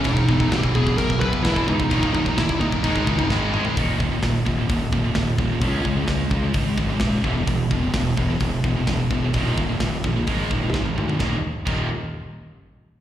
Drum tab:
CC |x---x---x---x---|x---x---x-------|----------------|----------------|
HH |----------------|----------------|o---o---o---o---|o---o---o---o---|
SD |----o-------o---|----o-------o---|----o-------o---|----o-------o---|
T1 |----------------|----------------|----------------|----------------|
T2 |----------------|--------------o-|----------------|----------------|
FT |----------------|---------------o|----------------|----------------|
BD |oooooooooooooooo|ooooooooooooo---|o-o-o-o-o-o-o-o-|o-o-o-o-o-o-o-o-|

CC |----------------|----------------|----x-----------|
HH |o---o---o---o---|o---o---o-------|----------------|
SD |----o-------o---|----o-------o---|o---------------|
T1 |----------------|-------------o--|----------------|
T2 |----------------|--------------o-|----------------|
FT |----------------|---------------o|----------------|
BD |o-o-o-o-o-o-o-o-|o-o-o-o-o-o-o---|o---o-----------|